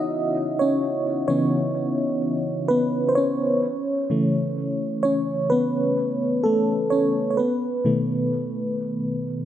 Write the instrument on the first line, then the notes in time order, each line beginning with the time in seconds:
fm electric piano
Already playing: C#4 D#4 E4 F#4 D#5 E5 F#5
0.59 C#4 C#5
1.28 C#3 E3 B3 C#4 C#5
2.68 B3 B4
3.09 C5
3.15 C#4 C#5
4.10 C#3 E3 A3
5.03 C#4 C#5
5.50 B3 B4
6.43 A3 A4
6.90 C#4 C#5
7.30 C#5
7.37 B3 B4
7.85 B2 D#3 A3